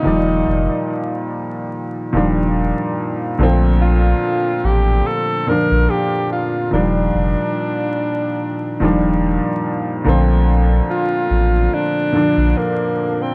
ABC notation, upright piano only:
X:1
M:4/4
L:1/8
Q:"Swing 16ths" 1/4=72
K:Bb
V:1 name="Upright piano" clef=bass
[B,,E,F,G,d]3 z2 [B,,E,F,G,D]2 z | [B,,D,F,A,C]3 z2 [B,,D,F,B,D]2 z | [B,,E,F,G,D]3 z2 [B,,E,F,G,D]2 z | [B,,D,F,A,C]3 z2 [B,,D,F,DA]2 z |]